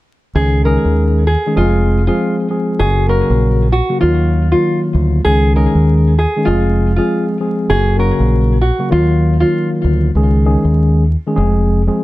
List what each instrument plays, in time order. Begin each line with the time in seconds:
0.35 fingered electric bass C#2, tine electric piano D#3 G#3 C#4 G#4, nylon-string guitar G#4
0.65 tine electric piano D#3 G#3 C#4 G#4, nylon-string guitar A#4
0.85 fingered electric bass D#2
1.27 nylon-string guitar G#4
1.46 tine electric piano D#3 G#3 C#4 G#4
1.56 fingered electric bass F1, tine electric piano F3 G#3 C4 G#4, nylon-string guitar F4
2.07 tine electric piano F3 G#3 C4 G#4, nylon-string guitar F4
2.50 tine electric piano F3 G#3 C4 G#4
2.79 fingered electric bass F#1, tine electric piano C#3 F#3 A#3 F#4, nylon-string guitar G#4
3.08 tine electric piano C#3 F#3 A#3 F#4, nylon-string guitar A#4
3.30 fingered electric bass A#1
3.72 nylon-string guitar F#4
3.89 tine electric piano C#3 F#3 A#3 F#4
4.00 fingered electric bass D#2, tine electric piano D#3 F#3 A#3 F4, nylon-string guitar F4
4.52 tine electric piano D#3 F#3 A#3 F4, nylon-string guitar F4
4.95 fingered electric bass D2
5.25 fingered electric bass C#2, tine electric piano D#3 G#3 C#4 G#4, nylon-string guitar G#4
5.55 tine electric piano D#3 G#3 C#4 G#4, nylon-string guitar A#4
5.75 fingered electric bass D#2
6.19 nylon-string guitar G#4
6.37 tine electric piano D#3 G#3 C#4 G#4
6.45 fingered electric bass F1, tine electric piano F3 G#3 C4 G#4, nylon-string guitar F4
6.96 tine electric piano F3 G#3 C4 G#4, nylon-string guitar F4
7.40 tine electric piano F3 G#3 C4 G#4
7.69 fingered electric bass F#1, tine electric piano C#3 F#3 A#3 F#4, nylon-string guitar G#4
7.98 tine electric piano C#3 F#3 A#3 F#4, nylon-string guitar A#4
8.20 fingered electric bass A#1
8.61 nylon-string guitar F#4
8.79 tine electric piano C#3 F#3 A#3 F#4
8.90 fingered electric bass D#2, tine electric piano D#3 F#3 A#3 F4, nylon-string guitar F4
9.40 tine electric piano D#3 F#3 A#3 F4, nylon-string guitar F4
9.84 fingered electric bass D2
10.15 fingered electric bass C#2, tine electric piano D#3 G#3 C#4 G#4
10.46 tine electric piano D#3 G#3 C#4 G#4
10.65 fingered electric bass D#2
11.27 tine electric piano D#3 G#3 C#4 G#4
11.35 fingered electric bass F1, tine electric piano F3 G#3 C4 G#4
11.87 tine electric piano F3 G#3 C4 G#4